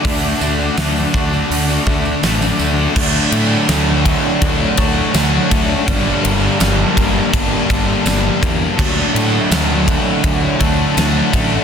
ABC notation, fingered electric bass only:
X:1
M:4/4
L:1/8
Q:1/4=82
K:D
V:1 name="Fingered electric bass" clef=bass
D,, D,, D,, D,, D,, D,, A,,, D,, | D,, A,, D,,2 D,, D,, D,, D,, | G,,, G,,, G,,, G,,, G,,, G,,, G,,, E,, | D,, A,, D,,2 D,, D,, D,, A,,, |]